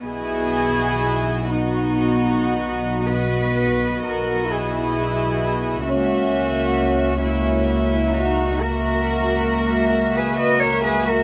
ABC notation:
X:1
M:12/8
L:1/16
Q:3/8=44
K:B
V:1 name="Violin section"
d6 d6 d12 | e6 e6 e12 |]
V:2 name="Cello section"
G6 F6 B4 A2 G6 | F6 E4 F2 A6- A B d c B A |]
V:3 name="Violin section"
E6 D6 F4 F2 E6 | C6 C4 D2 F6- F G B A G F |]
V:4 name="Viola section"
[B,F]6 [B,F]6 [B,F]12 | [A,F]6 [A,F]6 [A,F]12 |]
V:5 name="Double bass section" clef=bass
B,,,24 | C,,24 |]